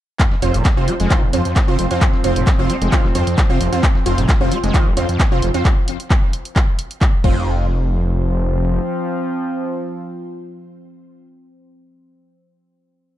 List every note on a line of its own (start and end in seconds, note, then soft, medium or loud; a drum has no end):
0.20 0.26 F2 medium
0.20 5.70 F3 medium
0.20 5.70 C4 medium
0.20 kick loud
0.20 clap loud
0.20 closed hi-hat medium
0.20 shaker medium
0.32 0.35 F2 medium
0.32 snare medium
0.42 0.50 F1 loud
0.42 0.56 F2 medium
0.42 0.53 C4 medium
0.42 0.53 F4 medium
0.42 0.53 C5 loud
0.42 open hi-hat loud
0.42 shaker medium
0.54 0.62 F1 loud
0.54 0.63 A#2 medium
0.54 closed hi-hat medium
0.54 closed hi-hat soft
0.65 0.69 F2 medium
0.65 kick loud
0.65 snare loud
0.65 clap loud
0.65 closed hi-hat medium
0.65 shaker medium
0.77 0.84 F1 loud
0.77 0.89 C3 medium
0.77 0.93 C4 loud
0.77 0.93 F4 medium
0.77 0.93 C5 loud
0.88 0.94 G#3 medium
0.88 open hi-hat medium
0.88 shaker medium
1.00 1.07 F1 medium
1.00 1.12 G#3 loud
1.00 snare medium
1.00 closed hi-hat medium
1.10 1.24 D#3 loud
1.10 1.21 C4 medium
1.10 1.21 F4 medium
1.10 1.21 C5 medium
1.10 kick loud
1.10 clap loud
1.10 closed hi-hat medium
1.10 shaker medium
1.23 1.30 F1 medium
1.23 1.26 F2 medium
1.33 1.37 F2 medium
1.33 1.41 F2 medium
1.33 1.44 C4 medium
1.33 1.44 F4 medium
1.33 1.44 C5 medium
1.33 open hi-hat loud
1.33 shaker medium
1.45 1.54 F2 loud
1.45 closed hi-hat medium
1.56 kick loud
1.56 snare loud
1.56 clap loud
1.56 closed hi-hat medium
1.56 shaker medium
1.68 1.77 C3 loud
1.68 1.84 C4 loud
1.68 1.84 F4 medium
1.68 1.84 C5 loud
1.79 1.87 F1 medium
1.79 1.85 F2 medium
1.79 open hi-hat medium
1.79 shaker medium
1.91 2.00 F2 medium
1.91 2.00 C4 medium
1.91 2.00 F4 medium
1.91 2.00 C5 medium
1.91 snare medium
1.91 closed hi-hat medium
2.01 kick loud
2.01 clap loud
2.01 closed hi-hat medium
2.01 shaker medium
2.13 2.17 F2 medium
2.13 snare medium
2.24 2.32 F1 loud
2.24 2.38 F2 medium
2.24 2.35 C4 medium
2.24 2.35 F4 medium
2.24 2.35 C5 loud
2.24 open hi-hat loud
2.24 shaker medium
2.36 2.43 F1 loud
2.36 2.45 A#2 medium
2.36 closed hi-hat medium
2.47 2.51 F2 medium
2.47 kick loud
2.47 snare loud
2.47 clap loud
2.47 closed hi-hat medium
2.47 shaker medium
2.59 2.66 F1 medium
2.59 2.71 C3 medium
2.59 2.74 C4 loud
2.59 2.74 F4 medium
2.59 2.74 C5 loud
2.70 2.76 G#3 medium
2.70 open hi-hat loud
2.70 shaker medium
2.82 2.89 F1 loud
2.82 2.94 G#3 loud
2.82 closed hi-hat medium
2.92 3.06 D#3 loud
2.92 3.03 C4 medium
2.92 3.03 F4 medium
2.92 3.03 C5 medium
2.92 kick loud
2.92 clap loud
2.92 closed hi-hat medium
2.92 shaker medium
3.04 3.12 F1 medium
3.04 3.08 F2 medium
3.04 snare soft
3.15 3.19 F2 medium
3.15 3.23 F2 medium
3.15 3.26 C4 medium
3.15 3.26 F4 medium
3.15 3.26 C5 loud
3.15 open hi-hat loud
3.15 shaker medium
3.27 3.36 F2 loud
3.27 closed hi-hat medium
3.38 3.42 F2 medium
3.38 kick loud
3.38 snare loud
3.38 clap loud
3.38 closed hi-hat medium
3.38 shaker medium
3.50 3.59 C3 loud
3.50 3.65 C4 loud
3.50 3.65 F4 medium
3.50 3.65 C5 loud
3.50 snare soft
3.61 3.69 F1 medium
3.61 3.67 F2 medium
3.61 open hi-hat loud
3.61 shaker medium
3.72 3.81 F2 medium
3.72 3.82 C4 medium
3.72 3.82 F4 medium
3.72 3.82 C5 medium
3.72 snare soft
3.72 closed hi-hat medium
3.83 kick loud
3.83 clap loud
3.83 closed hi-hat medium
3.83 shaker medium
3.95 3.99 F2 medium
3.95 snare medium
4.06 4.14 F1 loud
4.06 4.19 F2 medium
4.06 4.17 C4 medium
4.06 4.17 F4 medium
4.06 4.16 C5 loud
4.06 open hi-hat loud
4.06 shaker medium
4.18 4.25 F1 loud
4.18 4.27 A#2 medium
4.18 closed hi-hat medium
4.18 closed hi-hat soft
4.29 kick loud
4.29 snare loud
4.29 clap loud
4.29 closed hi-hat medium
4.29 shaker medium
4.41 4.48 F1 medium
4.41 4.53 C3 medium
4.41 4.56 C4 loud
4.41 4.56 F4 medium
4.41 4.56 C5 loud
4.51 4.58 G#3 medium
4.51 open hi-hat loud
4.51 shaker medium
4.63 4.71 F1 medium
4.63 4.76 G#3 loud
4.63 snare medium
4.63 closed hi-hat medium
4.74 4.88 D#3 loud
4.74 4.85 C4 medium
4.74 4.85 F4 medium
4.74 4.85 C5 medium
4.74 kick loud
4.74 clap loud
4.74 closed hi-hat medium
4.74 shaker medium
4.86 4.93 F1 medium
4.86 4.90 F2 medium
4.97 5.01 F2 medium
4.97 5.05 F2 medium
4.97 5.07 C4 medium
4.97 5.07 F4 medium
4.97 5.07 C5 medium
4.97 open hi-hat loud
4.97 shaker medium
5.09 5.18 F2 loud
5.09 closed hi-hat medium
5.19 5.24 F2 medium
5.19 kick loud
5.19 snare loud
5.19 clap loud
5.19 closed hi-hat medium
5.19 shaker medium
5.32 5.40 C3 loud
5.32 5.47 C4 loud
5.32 5.47 F4 medium
5.32 5.47 C5 loud
5.42 5.51 F1 medium
5.42 5.49 F2 medium
5.42 open hi-hat loud
5.42 shaker medium
5.54 5.63 F2 medium
5.54 5.64 C4 medium
5.54 5.64 F4 medium
5.54 5.64 C5 medium
5.54 snare medium
5.54 closed hi-hat medium
5.65 kick loud
5.65 clap loud
5.65 closed hi-hat medium
5.88 open hi-hat loud
6.00 closed hi-hat medium
6.11 kick loud
6.11 clap loud
6.11 closed hi-hat medium
6.33 open hi-hat medium
6.45 closed hi-hat medium
6.56 kick loud
6.56 clap loud
6.56 closed hi-hat medium
6.79 open hi-hat loud
6.91 closed hi-hat medium
7.01 kick loud
7.01 clap loud
7.01 closed hi-hat medium
7.24 8.79 F1 loud
7.24 7.66 F2 medium
7.24 11.26 F3 medium
7.24 11.26 C4 medium
7.24 11.26 F4 medium
7.24 11.26 C5 medium
7.24 kick loud
7.24 crash medium